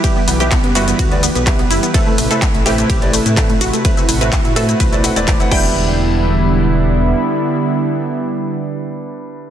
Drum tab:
CC |----------------|----------------|--------------x-|----------------|
RD |x---x---x---x---|x---x---x---x---|x---x---x---x---|----------------|
HH |x-oxxxoxxxoxxxox|x-oxxxoxxxoxxxox|xxoxxxoxxxoxxx--|----------------|
SH |x-xxx-xxx-xxx-xx|x-xxx-xxx-xxx-xx|xxxxx-xxxxxxxx--|----------------|
CP |----x-------x---|----x-------x---|----x-------x---|----------------|
BD |o---o---o---o---|o---o---o---o---|o---o---o---o-o-|----------------|

CC |----------------|
RD |----------------|
HH |----------------|
SH |----------------|
CP |----------------|
BD |----------------|